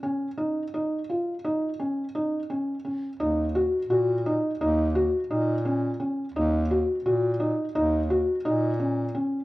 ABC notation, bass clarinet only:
X:1
M:9/8
L:1/8
Q:3/8=57
K:Ebm
V:1 name="Bass clarinet" clef=bass
z8 z | E,,2 B,,2 E,,2 B,,3 | E,,2 B,,2 E,,2 B,,3 |]